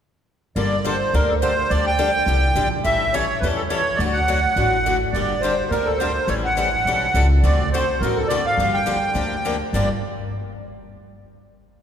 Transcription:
0.56 G1 D3 G3 A#3 D4 A4 D5
0.85 D3 G3 A#3 D4 A4 C5
1.13 D2 D3 G3 A#3 D4 A4 A#4
1.30 A4
1.42 D3 G3 A#3 D4 A4 C5
1.70 D2 D3 G3 D4 G4 A4 D5
1.87 G5
1.99 D3 G3 D4 G4 A4
2.26 C2 D3 G3 D4 G4 A4
2.55 A#1 D3 G3 D4 G4 A4
2.84 A1 E3 G3 C#4 E4 A4 E5
3.13 E3 G3 C#4 E4 A4 C#5
3.40 E2 E3 G3 C#4 B4
3.44 E4 A4
3.56 A4
3.68 E3 G3 C#4 E4 A4 C#5
3.96 D2 D5
4.00 D3 F#3 A3 D4 F#4
4.13 F#5
4.28 D3 F#3 A3 D4 F#4
4.56 A1 D3 F#3 A3 D4 F#4
4.86 D3 F#3 A3 D4 F#4
5.12 G1 D3 G3 A#3 D4 G4 D5
5.41 D3 G3 A#3 D4 C5
5.45 G4
5.71 D2 D3 G3 A#3 D4 G4 A#4
5.85 A4
5.98 D3 G3 A#3 D4 C5
6.02 G4
6.27 A1 E3 G3 C#4 E4 A4 C#5
6.45 F#5
6.57 E3 G3 C#4 E4 A4
6.85 B1 E3 G3 C#4 E4 A4
7.14 C#2 E3 G3 C#4 E4 A4
7.43 D2 D3 A3 C4 F#4 A4 D5
7.72 D3 A3 C4 F#4 A4 C5
8.00 A1 D3 A3 C4 F#4 A4 A#4
8.16 A4
8.28 D3 A3 C4 F#4 A4 D5
8.46 F5
8.57 G1 D3 F3 A#3 D4 G4
8.74 G5
8.86 D3 F3 A#3 D4 G4
9.15 D2 D3 F3 A#3 D4 G4
9.45 D3 F3 A#3 D4 G4
9.73 G1 G2 D3 F3 A#3 D4 G4 D5

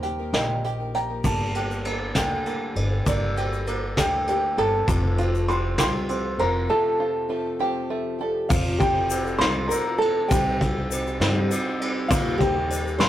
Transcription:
Already playing: D#2 D#3 G3 A#3 C4 D#4 G4 A#4 C5
0.03 G4, closed hi-hat
0.18 A#3 D#4 G4 A#4
0.33 A#1 C3 D3 D#3 A#3 G4 A#4 D#5 G5, snare, closed hi-hat
0.64 D#3 A#3 D#4 G4 A#4, closed hi-hat
0.78 A#3 D#4 G4 A#4
0.94 F3 G5 A#5, closed hi-hat
1.08 A#3 D#4 G4 A#4
1.23 G1 G2 G3 A#3 D4 G4 A4 A5, kick, crash, shaker
1.55 G4, ride, shaker
1.71 shaker
1.85 A#3 D4 G4 A4, ride, shaker
2.15 D2 G2 G3 A#3 D4 G4 A4 G5, kick, snare, ride, shaker
2.46 A#3, ride, shaker
2.76 G1 A#3 D4 G4 A4, ride
3.05 G1 G2 G3 A#3 D4 G4 A4 D5, kick, ride, shaker
3.37 G4, ride, shaker
3.53 shaker
3.66 A#3 D4 G4 A4, ride, shaker
3.97 D2 G2 G3 A#3 D4 G4 A4 G5, kick, snare, ride, shaker
4.27 A#3 G4 G5, ride, shaker
4.57 G1 A#3 D4 G4 A4 A5, ride
4.87 F1 F2 F3 A3 C4 F4 G4 A4 C5, kick, ride, shaker
5.17 F3 A3 F4 G4 C5, ride, shaker
5.35 shaker
5.48 F3 G3 A3 C4 F4 G4 A4 C5 C6, ride, shaker
5.78 C2 F3 A3 C4 F4 G4 A4 C5 D5 C6, kick, snare, ride, shaker
6.09 F3 A3 C4 G4 C5, ride, shaker
6.37 F1 F3 A3 G4 A4 A#4 C5 A#5, ride
6.42 F4
6.68 F1 F2 F3 A3 C4 F4 G4 A4 C5 A5
6.99 F3 A3 F4 G4 C5
7.28 F3 A3 C4 F4 G4 A4 C5
7.59 F3 A3 C4 F4 G4 A4 C5
7.89 F3 A3 G4 C5
8.19 F3 A3 F4 G4 A4 D5
8.49 F1 F2 F3 A3 C4 F4 A4 C5 F5, kick, crash, shaker
8.79 F3 A3 C4 F4 G4 A4 D5 G5, kick, ride, shaker
8.83 C5
8.94 F4 A4 C5
9.09 F3 A3 C4 A4 C5, ride, shaker
9.24 F4 A4 C5, shaker
9.38 C2 F3 A3 C4 F4 C5 C6, snare, ride
9.68 F3 A3 C4 F4 A4 A#4 C5 D5 A#5, ride, shaker
9.85 F4 A4 C5
9.98 F3 A3 C4 A4 C5 A5, ride
10.15 F4 A4 C5
10.28 C2 C3 G3 C4 D#4 G4 C5 D#5 G5, kick, ride, shaker
10.33 G4 C5
10.59 G3 C4 D#4 G4 C5 F5, kick, ride, shaker
10.64 C5
10.77 D#4 G4 C5
10.89 G3 C4 D#4 C5 D#5, ride, shaker
11.05 D#4 G4 C5, shaker
11.19 G2 C3 G3 C4 D#4 G4 C5 D#5, snare, ride
11.49 G3 C4 D#4 G4 C5 D#5, ride, shaker
11.54 C5
11.66 D#4 G4 C5
11.79 G3 C4 D#4 C5 D5, ride
11.96 D#4 G4 C5
12.08 D#2 D#3 G3 A#3 D#4 F4 A#4 D#5 F5, kick, ride, shaker
12.13 G4 A#4
12.38 G3 A#3 D#4 G4 A#4 D#5 G5, kick, ride, shaker
12.42 A#3 G4 A#4
12.55 A#3 G4 A#4
12.69 G3 A#3 D#4 A#4 D#5, ride, shaker
12.85 A#3 G4 A#4, shaker
12.98 A#1 D#3 G3 A#3 D#4 G4 A#4 C5 C6, snare, ride

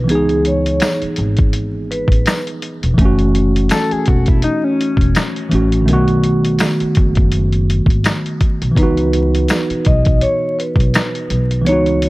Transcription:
0.04 E3 B3
0.09 C#2 D#4 G#4, closed hi-hat
0.15 G#4
0.29 closed hi-hat
0.45 C#5, closed hi-hat
0.66 closed hi-hat
0.80 finger snap, snare, closed hi-hat, tambourine
1.02 muted upright bass stroke, closed hi-hat
1.16 G#1, closed hi-hat
1.37 kick, closed hi-hat
1.53 closed hi-hat
1.91 B4, closed hi-hat
2.08 A1, kick
2.12 closed hi-hat
2.26 finger snap, snare, closed hi-hat, tambourine
2.47 closed hi-hat
2.62 closed hi-hat
2.83 E1, closed hi-hat
2.94 E3 A3, kick
2.98 F#1 C#4, closed hi-hat
3.05 F#4
3.19 closed hi-hat
3.35 closed hi-hat
3.56 closed hi-hat
3.69 A4, finger snap, snare, closed hi-hat, tambourine
3.91 G#4, muted upright bass stroke, closed hi-hat
4.06 E1 F#4, kick, closed hi-hat
4.26 E4, kick, closed hi-hat
4.42 D#4, closed hi-hat
4.64 C#4
4.81 closed hi-hat
4.97 E1, kick
5.01 closed hi-hat
5.15 finger snap, snare, closed hi-hat, tambourine
5.36 closed hi-hat
5.49 A1 E3 A3 C#4, closed hi-hat
5.55 F#4
5.72 closed hi-hat
5.82 D3 A3
5.88 B1 D#3 B3, closed hi-hat
5.93 F#4
6.08 closed hi-hat
6.24 closed hi-hat
6.45 closed hi-hat
6.59 finger snap, snare, closed hi-hat, tambourine
6.80 muted upright bass stroke, closed hi-hat
6.95 F#1, kick, closed hi-hat
7.15 kick, closed hi-hat
7.32 closed hi-hat
7.52 closed hi-hat
7.70 closed hi-hat
7.86 G#1, kick
7.90 closed hi-hat
8.04 finger snap, snare, closed hi-hat, tambourine
8.26 closed hi-hat
8.41 kick, closed hi-hat
8.62 B1, closed hi-hat
8.71 E3 B3
8.76 C#2 D#4 B4, kick, closed hi-hat
8.83 F#4
8.97 closed hi-hat
9.13 closed hi-hat
9.35 closed hi-hat
9.48 finger snap, snare, closed hi-hat, tambourine
9.70 muted upright bass stroke, closed hi-hat
9.85 B1 D#5, kick, closed hi-hat
10.05 kick, closed hi-hat
10.21 C#5, closed hi-hat
10.59 B4, closed hi-hat
10.76 B1, kick
10.80 closed hi-hat
10.94 finger snap, snare, closed hi-hat, tambourine
11.15 closed hi-hat
11.30 B1, closed hi-hat
11.51 closed hi-hat
11.62 E3 B3
11.66 C#2 D#4 C#5, closed hi-hat
11.73 F#4
11.86 closed hi-hat
12.02 C#5, closed hi-hat

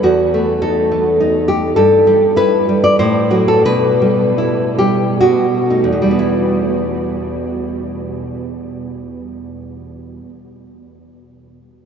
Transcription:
0.03 E2 F#4
0.34 A3
0.62 D#4 A4
0.92 A3
1.20 D#4
1.48 A3 G4
1.76 G2 A4
2.07 G3
2.36 E4 B4
2.69 G3
2.84 D5
2.99 A2 C5
3.31 F#3 F#4
3.48 A4
3.65 B2 B4
4.02 G3
4.38 E4
4.78 G3 G4
5.21 B2 F#4
5.70 A3 D#4
5.84 E2
5.93 B2
6.02 G3
6.11 B3
6.19 E4

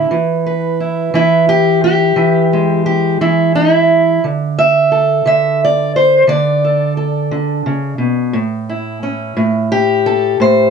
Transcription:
Already playing: D3 E4
0.11 E3
0.46 B4
0.80 E4
1.14 E3 E4
1.49 G4
1.84 G4
2.16 E3
2.53 G#3
2.86 G4
3.21 E3 E4
3.55 D#4
3.72 E4
4.24 D3
4.59 E5
4.92 A4
5.26 D3 E5
5.64 D5
5.96 C5
6.27 D3 D5
6.64 A4
6.97 A4
7.31 D3
7.66 C#3
7.98 B2
8.33 A2
8.69 E4
9.03 C#4
9.37 A2
9.72 G4
10.06 A4
10.40 A2 C5

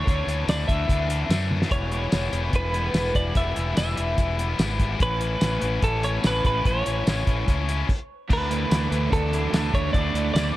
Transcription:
Already playing: C#5
0.06 D2 D3 E3 A3 D4, kick, closed hi-hat
0.27 D2 E3 A3 D4, closed hi-hat
0.48 D2 D3 E3 A3 D4 D5, snare, closed hi-hat, tambourine
0.68 D2 E3 A3 D4 E5, kick, closed hi-hat
0.89 D2, kick, closed hi-hat
1.08 E3 A3 D4, closed hi-hat
1.29 F#2 D3 E3 A3 D4, snare, closed hi-hat, tambourine
1.51 high tom
1.62 snare
1.70 E1 E3 G3 B3 E4 C#5, kick, closed hi-hat
1.90 G3 B3 E4, closed hi-hat
2.11 E1 E3 G3 B3 E4, snare, closed hi-hat, tambourine
2.32 E1 G3 B3 E4, closed hi-hat
2.53 E1 B4, kick, closed hi-hat
2.72 G3 B3 E4, closed hi-hat
2.93 E1 E3 G3 B3 E4, snare, closed hi-hat, tambourine
3.15 E1 D5, kick, closed hi-hat
3.34 E1 E3 G3 B3 E4 E5, kick, closed hi-hat
3.55 E1 G3 B3 E4, closed hi-hat
3.75 E1 E3 G3 B3 E4 E5, snare, closed hi-hat, tambourine
3.95 E1 G3 B3 E4, closed hi-hat
4.18 E1, kick, closed hi-hat
4.37 G3 B3 E4, closed hi-hat
4.58 G#1 E3 G3 B3 E4, snare, closed hi-hat, tambourine
4.80 kick, closed hi-hat
4.99 A1 A2 E3 A3 C#4 E4 B4, kick, closed hi-hat
5.20 A3 C#4 E4, closed hi-hat
5.40 A1 A2 E3 A3 C#4 E4, snare, closed hi-hat, tambourine
5.61 A1 A3 C#4 E4, closed hi-hat
5.82 A1 A4, kick, closed hi-hat
6.02 A3 C#4 E4 C#5, closed hi-hat
6.24 A1 E3 A3 C#4 E4 B4, snare, closed hi-hat, tambourine
6.45 A1 B4, kick, closed hi-hat
6.64 A1 A2 E3 A3 C#4 E4 C#5, kick, closed hi-hat
6.85 A1 A3 C#4 E4, closed hi-hat
7.06 A1 A2 E3 A3 C#4 E4, snare, closed hi-hat, tambourine
7.26 A1 A3 C#4 E4, kick, closed hi-hat
7.48 C#2, kick, closed hi-hat
7.68 A3 C#4 E4, closed hi-hat
7.89 kick, crash
8.29 D2 D3 A3 D4 E4 B4, kick, crash
8.49 A3 D4 E4, closed hi-hat
8.70 D2 D3 E3 A3 D4 E4, snare, closed hi-hat, tambourine
8.91 D2 A3 D4 E4, closed hi-hat
9.11 D2 D4 A4, kick, closed hi-hat
9.32 E3 A3 D4 E4, closed hi-hat
9.52 D2 D3 A3 D4 E4, snare, closed hi-hat, tambourine
9.73 D2 A3 C#5, kick, closed hi-hat
9.93 D2 D3 A3 D4 E4 D5, kick, closed hi-hat
10.14 D2 A3 D4 E4, closed hi-hat
10.34 D2 D3 E3 A3 D4 E4 D5, snare, closed hi-hat, tambourine

